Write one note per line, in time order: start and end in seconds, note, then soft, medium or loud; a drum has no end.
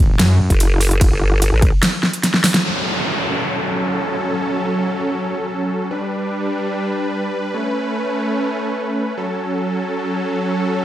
0.00 0.18 F#1 loud
0.19 0.38 F#2 loud
0.19 snare loud
0.19 closed hi-hat medium
0.19 ride medium
0.40 0.49 F#2 loud
0.50 1.10 F#1 loud
0.50 kick medium
0.50 closed hi-hat medium
0.60 closed hi-hat medium
0.60 ride soft
0.81 open hi-hat loud
0.91 closed hi-hat medium
1.01 kick loud
1.01 closed hi-hat medium
1.01 ride medium
1.11 1.51 G1 loud
1.42 closed hi-hat medium
1.42 ride soft
1.52 1.71 A1 loud
1.62 kick loud
1.62 closed hi-hat medium
1.83 snare loud
1.83 closed hi-hat medium
1.83 ride medium
2.03 snare medium
2.13 closed hi-hat medium
2.23 snare medium
2.23 closed hi-hat medium
2.23 ride soft
2.34 snare medium
2.44 snare medium
2.44 open hi-hat loud
2.54 snare medium
2.54 closed hi-hat medium
2.64 5.88 F#3 medium
2.64 5.88 C#4 medium
2.64 5.88 A4 medium
2.64 downlifter medium
5.91 7.52 G3 medium
5.91 7.52 D4 medium
5.91 9.14 B4 medium
7.54 9.16 A3 medium
7.54 9.16 C#4 medium
9.17 10.85 F#3 medium
9.17 10.85 C#4 medium
9.17 10.85 A4 medium